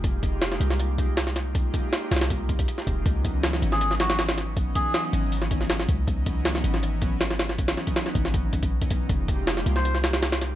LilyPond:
<<
  \new Staff \with { instrumentName = "Melodica" } { \time 4/4 \key des \lydian \tempo 4 = 159 r1 | r1 | r4. r16 aes'8 r16 ges'8 r4 | r8 aes'8. r2 r8. |
r1 | r1 | r4. r16 c''8 r4. r16 | }
  \new Staff \with { instrumentName = "Analog synth pad" } { \time 4/4 \key des \lydian <aes bes ees' f' g'>2~ <aes bes ees' f' g'>8 <aes bes ees' f' g'>16 r4 r16 | <aes bes ees' f' g'>2~ <aes bes ees' f' g'>8 r8. <aes bes ees' f' g'>16 <aes bes ees' f' g'>8 | <fes ges ces' des' ees'>2~ <fes ges ces' des' ees'>8 <fes ges ces' des' ees'>16 r4 r16 | <fes ges ces' des' ees'>2~ <fes ges ces' des' ees'>8 <fes ges ces' des' ees'>16 r4 r16 |
<fes ges ces' des' ees'>2~ <fes ges ces' des' ees'>8 <fes ges ces' des' ees'>16 r4 r16 | <fes ges ces' des' ees'>2~ <fes ges ces' des' ees'>8 r8. <fes ges ces' des' ees'>16 <fes ges ces' des' ees'>8 | <aes bes ees' f' g'>2~ <aes bes ees' f' g'>8 <aes bes ees' f' g'>16 r4 r16 | }
  \new Staff \with { instrumentName = "808-style bass" } { \clef bass \time 4/4 \key des \lydian f,,4. c,2~ c,8~ | c,8 r4 c,4. r8 ees,,16 f,,16 | des,4. aes,,2~ aes,,8~ | aes,,8 r4 aes,,2 des,8~ |
des,4. aes,,2~ aes,,8~ | aes,,8 r4 aes,,4. ces,4 | f,,4. c,2~ c,8 | }
  \new DrumStaff \with { instrumentName = "Drums" } \drummode { \time 4/4 <hh bd>8 <hh bd>8 <hh sn>16 sn16 hh16 sn16 hh8 <hh bd>8 <hh sn>16 sn16 <hh sn>8 | <hh bd>8 <hh bd>8 <hh sn>8 <hh sn>32 <hh sn>32 <hh sn>16 <hh bd>8 <hh bd>16 <hh bd>16 hh16 sn16 <hh bd>8 | <hh bd>8 <hh bd>8 <hh sn>16 sn16 hh16 sn16 hh16 sn16 <hh sn>16 <hh sn>16 <hh sn>16 <hh sn>16 <hh sn>8 | <hh bd>8 <hh bd>8 <hh sn>8 hh8 hho16 sn16 <hh bd>16 sn16 <hh sn>16 sn16 <hh bd>8 |
<hh bd>8 <hh bd>8 <hh sn>16 sn16 hh16 sn16 hh8 <hh bd>8 <hh sn>16 sn16 <hh sn>16 sn16 | <hh bd>16 <hh sn>16 sn16 <hh bd>16 <hh sn>16 sn16 <hh bd>16 sn16 <hh bd>8 <hh bd>16 <hh bd>16 r16 <hh bd>16 <hh bd>8 | <hh bd>8 <hh bd>8 <hh sn>16 sn16 hh16 sn16 hh16 sn16 <hh sn>16 <hh sn>16 <hh sn>16 <hh sn>16 <hh sn>8 | }
>>